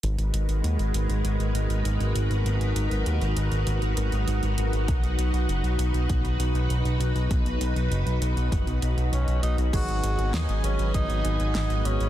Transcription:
<<
  \new Staff \with { instrumentName = "String machine" } { \time 4/4 \key gis \minor \tempo 4 = 99 << { <gis ais' b'>1~ | <gis ais' b'>1 | b'1~ | b'1 |
<dis'' gis''>1 | } \\ { <dis' fis'>1~ | <dis' fis'>1~ | <dis' fis'>1~ | <dis' fis'>1 |
<fis' b'>1 | } >> }
  \new Staff \with { instrumentName = "Tenor saxophone" } { \time 4/4 \key gis \minor r1 | r1 | r1 | r2. cis'8 dis'8 |
fis'4 dis'8 cis'8 dis'4 dis'8 cis'8 | }
  \new Staff \with { instrumentName = "Analog polysynth" } { \time 4/4 \key gis \minor r1 | r1 | r1 | r1 |
<fis b dis' gis'>2~ <fis b dis' gis'>8 <fis b dis' gis'>4. | }
  \new Staff \with { instrumentName = "Analog synth bass" } { \clef bass \time 4/4 \key gis \minor gis,,16 gis,,16 gis,,16 gis,,16 dis,16 gis,,16 gis,,16 gis,,16 gis,,16 gis,,16 gis,,16 gis,,16 gis,,16 gis,,16 gis,,16 gis,,16 | gis,,16 gis,,16 gis,,16 gis,,16 dis,16 gis,,16 gis,,16 gis,,16 gis,,16 gis,,16 gis,,16 gis,,16 gis,,16 gis,,16 gis,,16 gis,,16 | b,,16 b,,16 b,,16 b,,16 fis,,16 b,,16 b,,16 b,,16 b,,16 b,,16 b,,16 b,,16 b,,16 b,,16 b,,16 b,,16 | b,,16 b,,16 b,,16 b,,16 fis,,16 b,,16 b,,16 b,,16 fis,,16 b,,16 b,,16 b,,16 b,,16 b,,16 b,,16 b,,16 |
gis,,16 gis,,16 gis,,16 gis,,16 dis,16 gis,,16 gis,,16 gis,,16 gis,,16 gis,,16 gis,,16 gis,,16 gis,,16 gis,,16 gis,,16 gis,,16 | }
  \new DrumStaff \with { instrumentName = "Drums" } \drummode { \time 4/4 hh16 hh16 hh16 hh16 hh16 hh16 hh16 hh16 hh16 hh16 hh16 hh16 hh16 hh16 hh16 hh16 | hh16 hh16 hh16 hh16 hh16 hh16 hh16 hh16 hh16 hh16 hh16 hh16 hh16 hh16 hh16 hh16 | <hh bd>16 hh16 hh16 hh16 hh16 hh16 hh16 hh16 <hh bd>16 hh16 hh16 hh16 hh16 hh16 hh16 hh16 | <hh bd>16 hh16 hh16 hh16 hh16 hh16 hh16 hh16 <hh bd>16 hh16 hh16 hh16 hh16 hh16 hh16 hh16 |
<cymc hh bd>16 hh16 hh16 hh16 <hh sn>16 hh16 hh16 hh16 <hh bd>16 hh16 hh16 hh16 <hh sn>16 hh16 hh16 hh16 | }
>>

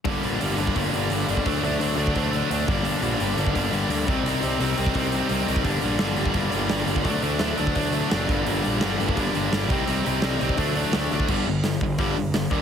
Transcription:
<<
  \new Staff \with { instrumentName = "Overdriven electric guitar" } { \clef bass \time 4/4 \key g \minor \tempo 4 = 171 <g, d g bes d'>8 <g, d g bes d'>8 <g, d g bes d'>8 <g, d g bes d'>8 <g, d g bes d'>8 <g, d g bes d'>8 <g, d g bes d'>8 <g, d g bes d'>8 | <d fis a d'>8 <d fis a d'>8 <d fis a d'>8 <d fis a d'>8 <d fis a d'>8 <d fis a d'>8 <d fis a d'>8 <g, d g bes d'>8 | <g, d g bes d'>8 <g, d g bes d'>8 <g, d g bes d'>8 <g, d g bes d'>8 <g, d g bes d'>8 <g, d g bes d'>8 <g, d g bes d'>8 <c g c' ees'>8 | <c g c' ees'>8 <c g c' ees'>8 <c g c' ees'>8 <c g c' ees'>8 <c g c' ees'>8 <c g c' ees'>8 <c g c' ees'>8 <c g c' ees'>8 |
<g, d g bes d'>8 <g, d g bes d'>8 <g, d g bes d'>8 <g, d g bes d'>8 <g, d g bes d'>8 <g, d g bes d'>8 <g, d g bes d'>8 <g, d g bes d'>8 | <d fis a d'>8 <d fis a d'>8 <d fis a d'>8 <d fis a d'>8 <d fis a d'>8 <d fis a d'>8 <d fis a d'>8 <g, d g bes d'>8 | <g, d g bes d'>8 <g, d g bes d'>8 <g, d g bes d'>8 <g, d g bes d'>8 <g, d g bes d'>8 <g, d g bes d'>8 <g, d g bes d'>8 <c g c' ees'>8 | <c g c' ees'>8 <c g c' ees'>8 <c g c' ees'>8 <c g c' ees'>8 <d fis a d'>8 <d fis a d'>8 <d fis a d'>8 <d fis a d'>8 |
<g, d g>8 <g, d>8 <g, d>8 <g, d>8 <g, d g>8 <g, d>8 <g, d>8 <g, d g>8 | }
  \new Staff \with { instrumentName = "Distorted electric guitar" } { \clef bass \time 4/4 \key g \minor <g, d g>8 <g, d g>8 <g, d g>8 <g, d g>8 <g, d g>8 <g, d g>8 <g, d g>8 <g, d g>8 | <d a d'>8 <d a d'>8 <d a d'>8 <d a d'>8 <d a d'>8 <d a d'>8 <d a d'>8 <g, d g>8 | <g, d g>8 <g, d g>8 <g, d g>8 <g, d g>8 <g, d g>8 <g, d g>8 <g, d g>8 <c g c'>8 | <c g c'>8 <c g c'>8 <c g c'>8 <c g c'>8 <c g c'>8 <c g c'>8 <c g c'>8 <c g c'>8 |
<g, d g>8 <g, d g>8 <g, d g>8 <g, d g>8 <g, d g>8 <g, d g>8 <g, d g>8 <g, d g>8 | <d a d'>8 <d a d'>8 <d a d'>8 <d a d'>8 <d a d'>8 <d a d'>8 <d a d'>8 <g, d g>8 | <g, d g>8 <g, d g>8 <g, d g>8 <g, d g>8 <g, d g>8 <g, d g>8 <g, d g>8 <c g c'>8 | <c g c'>8 <c g c'>8 <c g c'>8 <c g c'>8 <d a d'>8 <d a d'>8 <d a d'>8 <d a d'>8 |
<g, d g>8 <g, d>8 <g, d>8 <g, d>8 <g, d g>8 <g, d>8 <g, d>8 <g, d g>8 | }
  \new Staff \with { instrumentName = "Picked electric bass" } { \clef bass \time 4/4 \key g \minor g,,8 bes,,8 g,,8 g,,8 g,,8 g,,8 g,,8 g,,8 | d,8 d,8 d,8 d,8 d,4 d,8 g,,8 | g,,8 bes,,8 g,,8 g,,8 g,,8 g,,8 d,8 c,8 | c,8 c,8 c,8 c,8 c,4 c,8 c,8 |
g,,8 bes,,8 g,,8 g,,8 g,,8 g,,8 g,,8 g,,8 | d,8 d,8 d,8 d,8 d,4 fis,,8 g,,8 | g,,8 bes,,8 g,,8 g,,8 g,,8 g,,8 g,,8 c,8 | c,8 c,8 c,8 c,8 d,4 d,8 d,8 |
g,,8 g,,8 g,,8 g,,8 g,,4 g,,8 ees,8 | }
  \new DrumStaff \with { instrumentName = "Drums" } \drummode { \time 4/4 <hho bd>8 hho8 hho8 hho16 bd16 <hho bd>8 hho8 hho8 hho16 bd16 | <hho bd>8 hho8 hho8 hho16 bd16 <hho bd>8 hho8 hho8 bd8 | hho8 hho8 hho8 hho16 bd16 <hho bd>8 hho8 hho8 <hho bd>8 | hho8 hho8 hho8 hho16 bd16 <hho bd>8 hho8 hho8 hho16 bd16 |
<hho bd>8 hho8 sn8 hho16 bd16 <hho bd>8 hho8 <hho sn>8 hho16 bd16 | <hho bd>8 hho8 <hho sn>8 hho16 bd16 <hho bd>8 hho8 <hho sn>8 <hho bd>8 | hho8 hho8 <hho sn>8 hho16 bd16 <hho bd>8 hho8 <hho sn>8 <hho bd>8 | hho8 hho8 <hho sn>8 hho16 bd16 <hho bd>8 hho8 <hho sn>8 hho16 bd16 |
<cymc bd>4 <hho sn>8 bd8 <hho bd>4 <hho sn>8 bd8 | }
>>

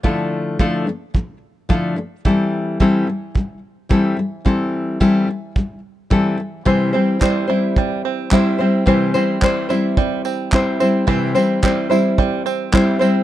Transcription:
<<
  \new Staff \with { instrumentName = "Five-string banjo" } { \time 4/4 \key c \mixolydian \tempo 4 = 109 r1 | r1 | r1 | e8 c'8 g8 e'8 g8 c'8 e'8 c'8 |
e8 c'8 g8 e'8 g8 c'8 e'8 c'8 | e8 c'8 g8 e'8 g8 c'8 e'8 c'8 | }
  \new Staff \with { instrumentName = "Nylon-string guitar" } { \time 4/4 \key c \mixolydian <d f a d' e' a'>4 <d f a d' e' a'>8 <d f a>8 <d f a>8 r8 <d f a d' e' a'>8 <d f a>8 | <e g c' e' a'>4 <e g c' e' a'>8 <e g>8 <e g>8 r8 <e g c' e' a'>8 <e g>8 | <e g c' e' a'>4 <e g c' e' a'>8 e8 <e g>8 r8 <e g c' e' a'>8 g8 | <c e g c' e' c''>8 <g c' e' c''>8 <g c' e' c''>8 <g c' e' c''>4. <g c' e' c''>8 <g c' e' c''>8 |
<c e g c' e' c''>8 <g c' e' c''>8 <g c' e' c''>8 <g c' e' c''>4. <g c' e' c''>8 <g c' e' c''>8 | <c e g c' e' c''>8 <g c' e' c''>8 <g c' e' c''>8 <g c' e' c''>4. <g c' e' c''>8 <g c' e' c''>8 | }
  \new DrumStaff \with { instrumentName = "Drums" } \drummode { \time 4/4 bd4 bd4 bd4 bd4 | bd4 bd4 bd4 bd4 | bd4 bd4 bd4 bd4 | bd4 <hc bd>4 bd4 <hc bd>4 |
bd8 tamb8 <hc bd>8 tamb8 bd8 tamb8 <hc bd>8 tamb8 | bd8 tamb8 <hc bd>8 tamb8 bd8 tamb8 <hc bd>8 tamb8 | }
>>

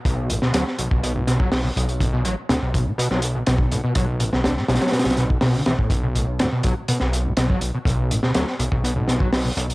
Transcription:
<<
  \new Staff \with { instrumentName = "Acid bass" } { \clef bass \time 4/4 \key b \minor \tempo 4 = 123 b,,8 b,16 b,16 fis16 r16 b,16 b,,8 b,16 b,16 fis16 r16 b,16 b,,8 | b,16 b,16 fis16 r16 b,16 b,,8 b,16 b,16 fis16 r16 b,16 b,,8 b,16 b,16 | fis16 r16 b,16 b,,8 b,16 b,16 fis16 r16 b,16 b,16 r16 b,16 d16 e16 a,16 | r16 b,16 b,,8 b,16 b,16 fis16 r16 b,16 b,,8 b,16 b,16 fis16 r16 b,16 |
b,,8 b,16 b,16 fis16 r16 b,16 b,,8 b,16 b,16 fis16 r16 b,16 b,,8 | }
  \new Staff \with { instrumentName = "Analog synth bass" } { \clef bass \time 4/4 \key b \minor b,,8 a,,16 d,16 d,16 r16 b,,16 r16 b,16 b,,8. b,,8 b,,16 r16 | b,,8 a,,16 r16 d,16 r16 b,,16 r16 b,16 b,,8. b,,8 b,,16 r16 | b,,8 a,,16 d,16 d,16 r16 b,,16 r16 b,16 b,,8. b,,8 b,,16 r16 | b,,8 a,,16 r16 d,16 r16 b,,16 r16 b,16 b,,8. b,,8 b,,16 r16 |
b,,8 a,,16 d,16 d,16 r16 b,,16 r16 b,16 b,,8. b,,8 b,,16 r16 | }
  \new DrumStaff \with { instrumentName = "Drums" } \drummode { \time 4/4 <hh bd>8 hh16 sn16 <hh sn>16 sn16 hh16 bd16 hh8 <hh sn>16 bd16 <hho sn>8 hh16 hh16 | <hh bd>8 hh8 <hh sn>8 <hh bd>8 hh16 sn16 hh8 <hh sn>16 bd16 hh8 | <hh bd>8 hh16 sn16 <hh sn>16 sn16 <hh sn>32 <hh sn>32 <hh sn>32 <hh sn>32 <hh sn>32 <hh sn>32 <hh sn>32 <hh sn>32 <hh sn>16 bd16 <hho sn>8 <hh sn>16 bd16 | <hh bd>8 hh8 <hh sn>8 <hh bd>8 hh16 sn16 hh8 <hh sn>16 bd16 hh8 |
<hh bd>8 hh16 sn16 <hh sn>16 sn16 hh16 bd16 hh8 <hh sn>16 bd16 <hho sn>8 hh16 hh16 | }
>>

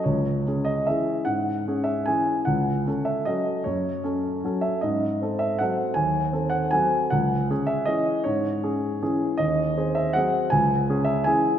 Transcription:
\new Staff \with { instrumentName = "Grand piano" } { \time 3/4 \key cis \minor \tempo 4 = 156 << { cis''4. dis''8 e''4 | fis''4. e''8 gis''4 | fis''4. e''8 dis''4 | cis''2 r8 e''8 |
dis''4. e''8 fis''4 | gis''4. fis''8 gis''4 | fis''4. e''8 dis''4 | cis''2 r4 |
dis''4. e''8 fis''4 | gis''4. e''8 gis''4 | } \\ { cis,4 <cis' gis'>4 <e cis' gis'>4 | gis,4 <cis' gis'>4 <e cis' gis'>4 | cis,4 <cis' a'>4 <fis cis' a'>4 | fis,4 <cis' a'>4 <fis cis' a'>4 |
gis,4 <bis a'>4 <fis bis a'>4 | dis,4 <bis a'>4 <fis bis a'>4 | cis,4 <cis' gis'>4 <e cis' gis'>4 | gis,4 <cis' gis'>4 <e cis' gis'>4 |
dis,4 <bis gis'>4 <fis bis gis'>4 | cis,4 <cis' gis'>4 <e cis' gis'>4 | } >> }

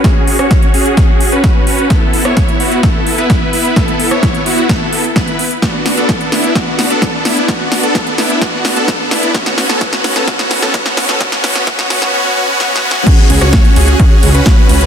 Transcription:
<<
  \new Staff \with { instrumentName = "Supersaw synth" } { \time 4/4 \key fis \minor \tempo 4 = 129 <cis' fis' gis'>8. <cis' fis' cis''>8. <cis' fis' gis'>8 <cis' fis' gis'>8. <cis' fis' b'>8. <cis' fis' b'>8 | <b e' a'>8. <b e' cis''>8. <b e' fis'>8 <b e' a'>8. <b e' b'>8. <b e' b'>8 | <b e' a'>8. <b e' cis''>8. <b e' fis'>8 <b e' a'>8. r16 <b e' b'>8 r8 | <b d' fis'>8. <b d' a'>8. <b d' e'>8 <b d' fis'>8. <b d' a'>8. <b d' e'>8 |
<b d' fis'>8. <b d' a'>8. <b d' e'>8 <b d' fis'>8. <b d' a'>8. <b d' e'>8 | <b cis' fis'>8. <b cis' a'>16 <b cis' fis'>8. <b cis' a'>16 <b cis' fis'>8. <b cis' a'>16 <b cis' fis'>8. <b cis' a'>16 | <b cis' fis'>8 <b cis' fis'>8 <b cis' fis'>8 <b cis' fis'>8 <b cis' fis'>8 <b cis' fis'>8 <b cis' fis'>8 <b cis' fis'>8 | <cis' fis' gis'>8. <cis' fis' cis''>8. <cis' fis' gis'>8 <cis' fis' gis'>8. <cis' fis' b'>8. <cis' fis' b'>8 | }
  \new Staff \with { instrumentName = "Detuned saw bass" } { \clef bass \time 4/4 \key fis \minor r1 | r1 | r1 | r1 |
r1 | r1 | r1 | r8 cis,16 cis,16 r8 cis,16 r8. cis,16 r8. cis,16 r16 | }
  \new DrumStaff \with { instrumentName = "Drums" } \drummode { \time 4/4 <hh bd sn>8 hho16 <hh ss>16 <hh bd sn>16 hh16 hho16 hh16 <hh bd sn>8 hho16 hh16 <hh bd sn>8 hho16 hh16 | <hh bd sn>8 hho16 <hh ss>16 <hh bd sn>16 hh16 hho16 hh16 <hh bd sn>8 hho16 hh16 <hh bd sn>8 hho16 hh16 | <hh bd sn>16 hh16 hho16 ss16 <hh bd sn>16 hh16 hho16 hh16 <hh bd sn>8 hho16 hh16 <hh bd sn>16 hh16 hho16 hh16 | <hh bd sn>8 <hho sn>16 hh16 <hh bd sn>16 hh16 <hho sn>16 hh16 <hh bd sn>8 <hho sn>16 hh16 <hh bd sn>8 <hho sn>16 hh16 |
<hh bd sn>8 <hho sn>16 hh16 <hh bd sn>16 hh16 <hho sn>16 hh16 <hh bd sn>8 <hho sn>16 hh16 <hh bd sn>8 <hho sn>16 hh16 | <hh bd sn>16 sn16 <hho sn>16 <hh sn>16 <hh bd sn>16 <hh sn>16 <hho sn>16 <hh sn>16 <hh bd sn>16 sn16 <hho sn>16 <hh sn>16 <hh bd sn>16 sn16 <hho sn>16 <hh sn>16 | <hh bd sn>16 <hh sn>16 <hho sn>16 <hh sn>16 <hh bd sn>16 <hh sn>16 <hho sn>16 sn16 r4 \tuplet 3/2 { sn8 sn8 sn8 } | <cymc hh bd cymr>8 <hho cymr>16 <hh ss>16 <hh bd sn>16 hh16 <hho cymr>16 hh16 <hh bd cymr>8 <hho cymr>16 hh16 <hh bd sn>8 <hho cymr>16 hh16 | }
>>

